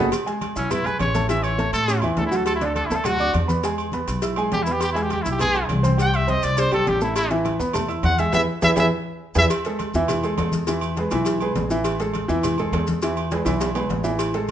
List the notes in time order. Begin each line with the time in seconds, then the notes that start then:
Already playing: G#3 B3
0.12 cowbell, high conga, low agogo, maracas
0.26 G#3 G#4 G#5, cowbell, high conga, maracas
0.41 cowbell, high conga, low timbale, low agogo, maracas
0.56 B1 C#4 E4 E5 E6, high conga, maracas
0.70 B3 E4 B4 B5, cowbell, high conga, low conga, low agogo, maracas
0.84 G#4 B4 G#5 G#6, high conga, low conga, low agogo, maracas
0.99 A1 C#5, cowbell, high conga, low timbale, low agogo, maracas
1.15 A3 A4 A5, cowbell, high conga, maracas
1.29 E3 E4 E5, cowbell, high conga, low agogo, maracas
1.44 C#5, high conga, low agogo, maracas
1.58 A3 A4 A5, cowbell, high conga, low timbale, maracas
1.73 A2 A4, cowbell, high conga, low agogo, maracas
1.88 C#4 C#5 C#6, cowbell, high conga, low agogo, maracas
2.02 E2 E3 E4 E5, high conga, low agogo, maracas
2.17 D2 A4, cowbell, high conga, low timbale, maracas
2.27 E4
2.31 F#3 F#4 F#5, high conga, maracas
2.36 A4
2.46 A4, cowbell, high conga, low agogo, maracas
2.55 E4
2.60 D3 D4 D5, cowbell, high conga, maracas
2.66 A4
2.76 A4, cowbell, high conga, low timbale, low agogo, maracas
2.86 E4
2.90 D2 A3 A4 A5, high conga, maracas
2.96 A4
3.04 F#3 F#4 F#5, cowbell, high conga, low conga, low agogo, maracas
3.18 D4 D5 D6, high conga, low agogo, maracas
3.34 E2, cowbell, high conga, low timbale, low agogo, maracas
3.48 B3 B4 B5, cowbell, high conga, maracas
3.63 G#3 G#4 G#5, cowbell, low agogo, maracas
3.78 low agogo, maracas
3.92 B3 B4 B5, cowbell, high conga, low timbale, maracas
4.07 B1, cowbell, high conga, low agogo, maracas
4.22 E4 E5 E6, cowbell, high conga, low agogo, maracas
4.36 G#3 G#4 G#5, high conga, low agogo, maracas
4.52 E2 G4, cowbell, high conga, low timbale, maracas
4.63 B3 E4, maracas
4.67 B4 B5, high conga
4.72 G4
4.80 G4, cowbell, high conga, low agogo, maracas
4.93 G#3 E4 G#4 G#5, cowbell
4.97 high conga, maracas
5.02 G4
5.10 G4, cowbell, high conga, low timbale, low agogo, maracas
5.22 B1 E4 E5 E6, maracas
5.27 high conga
5.32 G4
5.39 B3 G#4 B4 B5, cowbell, high conga, low conga, low agogo, maracas
5.54 G#4 G#5 G#6, high conga, low agogo, maracas
5.69 C2, cowbell, high conga, low timbale, low agogo, maracas
5.83 C4 C5 C6, cowbell, high conga, maracas
5.97 G3 G4 G5, cowbell, high conga, low agogo, maracas
6.02 G5
6.14 E5, high conga, low agogo, maracas
6.27 C4 C5 D#5 C6, cowbell, high conga, low timbale, maracas
6.43 C2 D5, cowbell, low agogo, maracas
6.57 D4 C5 D5 D6, cowbell, high conga, low agogo, maracas
6.71 B1 G3 G4 A4 G5, high conga, low agogo, maracas
6.87 A1 G4, cowbell, high conga, low timbale, maracas
7.01 A3 E4 A4 A5, maracas
7.16 E4, cowbell, high conga, low agogo, maracas
7.31 E3 E4 E5, cowbell, high conga, maracas
7.45 cowbell, high conga, low timbale, low agogo, maracas
7.59 E2 B3 B4 B5, high conga, maracas
7.73 A3 A4 A5, cowbell, high conga, low conga, low agogo, maracas
7.88 E4 E5 E6, high conga, low agogo, maracas
8.03 E2 F#5, cowbell, high conga, low timbale, low agogo, maracas
8.18 G#3 G#4 E5 G#5, cowbell, high conga, maracas
8.33 E2 E4 G#4 B4 E5, cowbell, high conga, high timbale, maracas
8.62 E2 E4 G#4 B4 E5, cowbell, high conga, high timbale, maracas
8.76 E2 E4 G#4 B4 E5, cowbell, high conga, high timbale, maracas
9.35 E2 E4 G#4 B4 E5, cowbell, high conga, high timbale, maracas
9.50 cowbell, high conga, low agogo, maracas
9.65 G#3 G#4 A4, cowbell, high conga, maracas
9.79 cowbell, high conga, low timbale, low agogo, maracas
9.94 E2 E3 E4 E5, high conga, maracas
10.08 cowbell, high conga, low conga, low agogo, maracas
10.23 G#3 G#4 A4, high conga, low agogo, maracas
10.38 E2 G#3 G#4 A4, cowbell, high conga, low timbale, low agogo, maracas
10.52 cowbell, high conga, maracas
10.67 E3 E4 E5, cowbell, high conga, low agogo, maracas
10.81 high conga, low agogo, maracas
10.96 G#3 G#4 B4, cowbell, high conga, low timbale, maracas
11.11 B1 E3 E4 E5, cowbell, low agogo, maracas
11.25 cowbell, high conga, low agogo, maracas
11.40 G#3 G#4 B4, high conga, low agogo, maracas
11.55 A1, cowbell, high conga, low timbale, maracas
11.70 E3 E4 E5, high conga, maracas
11.84 cowbell, high conga, low agogo, maracas
12.00 G#3 G#4 A4, cowbell, high conga, maracas
12.13 cowbell, high conga, low timbale, low agogo, maracas
12.28 E2 E3 E4 E5, high conga, maracas
12.43 cowbell, high conga, low conga, low agogo, maracas
12.58 G#3 G#4 A4, high conga, low conga, low agogo, maracas
12.72 E2 G#3 G#4 A4, cowbell, high conga, low timbale, low agogo, maracas
12.87 cowbell, high conga, maracas
13.02 E3 E4 E5, cowbell, high conga, low agogo, maracas
13.17 high conga, low agogo, maracas
13.31 G#3 G#4 B4, cowbell, high conga, high timbale, maracas
13.45 B1 E3 E4 E5, cowbell, high timbale, low agogo, maracas
13.61 cowbell, high conga, low timbale, low agogo, maracas
13.75 G#3 G#4 B4, high conga, low timbale, low agogo, maracas
13.89 A1, cowbell, high conga, low timbale, maracas
14.04 E3 E4 E5, low timbale, maracas
14.19 cowbell, high conga, low agogo, maracas
14.34 G#3 G#4 A4, cowbell, high conga, maracas